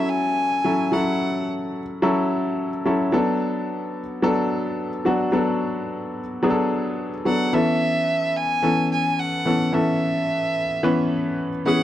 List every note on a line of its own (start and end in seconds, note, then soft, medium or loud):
0.00 0.64 F#3 medium
0.00 0.65 C#4 medium
0.00 0.65 E4 medium
0.00 0.66 A4 medium
0.00 0.11 E5 medium
0.10 0.94 G#5 loud
0.64 0.87 F#3 medium
0.64 0.87 C#4 medium
0.64 0.87 E4 medium
0.64 0.87 A4 medium
0.92 1.80 F#3 medium
0.92 1.80 C#4 medium
0.92 1.80 E4 medium
0.92 1.80 A4 medium
0.92 1.48 F#5 medium
2.02 2.68 F#3 medium
2.02 2.68 C#4 medium
2.02 2.68 E4 medium
2.02 2.69 A4 loud
2.85 3.07 F#3 medium
2.85 3.07 C#4 medium
2.85 3.08 E4 medium
2.85 3.08 A4 medium
3.12 4.00 F#3 medium
3.12 4.00 B3 medium
3.12 4.00 D4 medium
3.12 4.01 A4 loud
4.22 4.88 F#3 medium
4.22 4.88 B3 medium
4.22 4.89 D4 medium
4.22 4.89 A4 loud
5.05 5.27 F#3 medium
5.05 5.27 B3 medium
5.05 5.27 D4 medium
5.05 5.28 F#4 medium
5.32 6.20 F#3 medium
5.32 6.20 B3 medium
5.32 6.20 D4 medium
5.32 6.21 A4 loud
6.43 7.08 F#3 medium
6.43 7.09 B3 medium
6.43 7.09 D4 medium
6.43 6.50 G#4 medium
6.50 7.12 A4 loud
7.25 7.47 F#3 medium
7.25 7.48 B3 medium
7.25 7.48 D4 medium
7.25 7.48 A4 medium
7.25 7.56 F#5 loud
7.53 8.41 E3 medium
7.53 8.41 B3 medium
7.53 8.41 C#4 medium
7.53 8.41 A4 medium
7.53 8.38 E5 loud
8.36 8.91 G#5 loud
8.62 9.28 E3 medium
8.62 9.29 B3 medium
8.62 9.29 C#4 medium
8.62 9.29 A4 medium
8.92 9.21 G#5 loud
9.19 9.76 F#5 loud
9.45 9.68 E3 medium
9.45 9.68 B3 medium
9.45 9.68 C#4 medium
9.45 9.68 A4 medium
9.72 10.60 E3 medium
9.72 10.61 B3 medium
9.72 10.61 C#4 medium
9.72 10.61 A4 medium
9.72 11.39 E5 loud
10.83 11.49 E3 medium
10.83 11.49 B3 medium
10.83 11.49 C#4 medium
10.83 11.49 B4 loud
11.66 11.83 E3 medium
11.66 11.83 B3 medium
11.66 11.83 C#4 medium
11.66 11.83 G#4 medium
11.66 11.83 F#5 loud